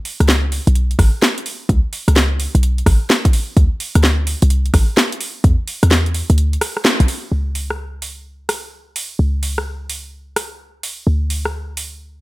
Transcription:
0.05 open hi-hat
0.20 C#2, cross-stick, closed hi-hat
0.28 snare
0.52 open hi-hat
0.67 B1, closed hi-hat
0.75 closed hi-hat
0.91 closed hi-hat
0.99 G#1, kick, cross-stick, open hi-hat
1.22 snare
1.38 closed hi-hat
1.46 open hi-hat
1.69 C#2, kick, closed hi-hat
1.93 open hi-hat
2.08 C#2, cross-stick, closed hi-hat
2.16 snare
2.40 open hi-hat
2.55 B1, closed hi-hat
2.63 closed hi-hat
2.78 closed hi-hat
2.86 G#1, kick, cross-stick, open hi-hat
3.10 snare
3.25 kick, closed hi-hat
3.33 open hi-hat
3.57 D2, kick, closed hi-hat
3.80 open hi-hat
3.95 D2, cross-stick, closed hi-hat
4.03 snare
4.27 open hi-hat
4.42 C2, closed hi-hat
4.50 closed hi-hat
4.66 closed hi-hat
4.74 A1, kick, cross-stick, open hi-hat
4.97 snare
5.12 closed hi-hat
5.21 open hi-hat
5.44 E2, kick, closed hi-hat
5.68 open hi-hat
5.83 E2, cross-stick, closed hi-hat
5.91 snare
6.06 closed hi-hat
6.14 open hi-hat
6.30 D2, closed hi-hat
6.38 closed hi-hat
6.53 closed hi-hat
6.61 cross-stick, open hi-hat
6.77 cross-stick
6.85 snare
7.00 B1, closed hi-hat
7.08 open hi-hat
7.32 C#2
7.55 open hi-hat
7.70 cross-stick
8.02 open hi-hat
8.49 cross-stick, open hi-hat
8.96 open hi-hat
9.19 C#2
9.43 open hi-hat
9.58 cross-stick
9.90 open hi-hat
10.36 cross-stick, open hi-hat
10.83 open hi-hat
11.07 D2
11.30 open hi-hat
11.45 cross-stick
11.77 open hi-hat

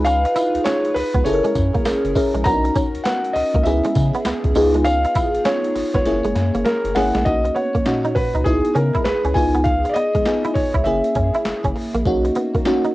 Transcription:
Already playing: C#2 D#4 F4 G#4 B4
0.05 C#4 F5, closed hi-hat, tambourine
0.25 muted clean electric guitar stroke, closed hi-hat
0.36 E4, closed hi-hat, tambourine
0.55 C#2, closed hi-hat
0.64 C#4 C#5, snare, clap, closed hi-hat, tambourine
0.85 closed hi-hat
0.95 C#2 B4, muted clean electric guitar stroke, open hi-hat
1.15 C#2 B3, kick
1.25 F#1 C#4 E4 G#4 A4 C#5, closed hi-hat, tambourine
1.33 A#4
1.45 G#3, closed hi-hat
1.55 F#2, muted clean electric guitar stroke, kick, closed hi-hat, tambourine
1.75 A#3, kick, closed hi-hat
1.85 F#1 A#3, snare, clap, closed hi-hat, tambourine
2.05 F#1, closed hi-hat
2.15 C#4 E4 G#4 A#4, muted clean electric guitar stroke, kick, open hi-hat, tambourine
2.35 A#1 G#3, closed hi-hat
2.44 B1 B3 C#4 D4 F#4 A#4 A#5, kick, closed hi-hat, tambourine
2.52 D#4
2.64 muted clean electric guitar stroke, closed hi-hat
2.75 C#4, kick, closed hi-hat, tambourine
2.95 C#2, closed hi-hat
3.04 B3 F#5, snare, clap, closed hi-hat, tambourine
3.25 closed hi-hat
3.33 C#2 D#5, muted clean electric guitar stroke, open hi-hat
3.54 C#2 A#3, kick, closed hi-hat
3.63 C#2 B3 C#4 E4 G#4 E5, closed hi-hat, tambourine
3.84 G#3, closed hi-hat
3.95 C#3, muted clean electric guitar stroke, kick, closed hi-hat, tambourine
4.14 B3, closed hi-hat
4.25 C#2 B3, snare, clap, closed hi-hat, tambourine
4.44 C#2, kick, closed hi-hat
4.55 C#2 B3 D#4 F4 G#4, muted clean electric guitar stroke, open hi-hat, tambourine
4.74 G#3, closed hi-hat
4.85 C#4 F5, closed hi-hat, tambourine
5.05 muted clean electric guitar stroke, closed hi-hat
5.15 E4, kick, closed hi-hat, tambourine
5.35 G#1, closed hi-hat
5.45 C#4 C#5, snare, clap, closed hi-hat, tambourine
5.64 closed hi-hat
5.75 G#1, muted clean electric guitar stroke, open hi-hat
5.94 G#1 B3 C#5, kick, snare
6.05 F#1 A#3 C#4 E4 G#4, snare, closed hi-hat
6.24 F#1 G#3, closed hi-hat
6.35 F#2, muted clean electric guitar stroke, snare, closed hi-hat
6.55 F#1 A#3, closed hi-hat
6.65 A#3 A#4, snare, closed hi-hat
6.84 F#1, closed hi-hat
6.95 G#1 A#3 C#4 E4 G#4 F#5, muted clean electric guitar stroke, snare, open hi-hat
7.15 A#1 G#3, snare, closed hi-hat
7.25 B1 A#3 C#4 D#4 F#4 D#5, kick, closed hi-hat
7.45 muted clean electric guitar stroke, closed hi-hat
7.54 B3 C#5, closed hi-hat
7.75 C#2 A#3, kick, closed hi-hat
7.85 A#2 C#4 D#4 F#4, snare, clap, closed hi-hat
8.05 D#4, closed hi-hat
8.15 C#2 B4, muted clean electric guitar stroke, kick, open hi-hat
8.35 C#2 D#4, closed hi-hat
8.44 C#2 B3 D#4 E4 G#4, muted clean electric guitar stroke, kick, closed hi-hat
8.65 closed hi-hat
8.75 C#3 C#4 A#4, closed hi-hat
8.95 E4, kick, closed hi-hat
9.04 C#2 B4, snare, clap, closed hi-hat
9.25 C#2 C#4, closed hi-hat
9.34 C#2 B3 D#4 F4 G#4 G#5, muted clean electric guitar stroke, kick, open hi-hat
9.55 B3, closed hi-hat
9.64 F5, kick, closed hi-hat
9.85 muted clean electric guitar stroke, closed hi-hat
9.89 D5
9.94 B3 D#5, closed hi-hat
10.15 C#2 G#3, kick, closed hi-hat
10.25 B3 D#4 F4 G#4, snare, clap, closed hi-hat
10.45 E4, closed hi-hat
10.54 C#2 C#5, muted clean electric guitar stroke, kick, open hi-hat
10.74 C#2 E4, kick, closed hi-hat
10.84 F#1 A#3 C#4 E4 G#4 E5, muted clean electric guitar stroke, closed hi-hat
11.04 closed hi-hat
11.15 F#2 C#4, kick, closed hi-hat
11.34 E4, closed hi-hat
11.45 F#1, snare, clap, closed hi-hat
11.64 F#1 C#4, kick, closed hi-hat
11.76 muted clean electric guitar stroke, open hi-hat
11.95 A#1 A#3, closed hi-hat
12.05 B1 A#3 C#4 D#4 F#4, kick, closed hi-hat
12.25 muted clean electric guitar stroke, closed hi-hat
12.35 B3, closed hi-hat
12.55 C#2 A#3, kick, closed hi-hat
12.65 A#3 C#4 D#4 F#4, snare, clap, closed hi-hat
12.84 D#4, closed hi-hat

